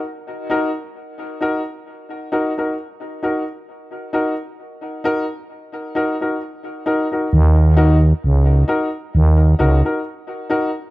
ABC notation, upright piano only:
X:1
M:4/4
L:1/16
Q:"Swing 16ths" 1/4=66
K:Ebm
V:1 name="Upright piano"
z2 [EGB] z3 [EGB] z3 [EGB] [EGB] z2 [EGB] z | z2 [EGB] z3 [EGB] z3 [EGB] [EGB] z2 [EGB] [EGB] | z2 [EGB] z3 [EGB] z3 [EGB] [EGB] z2 [EGB] z |]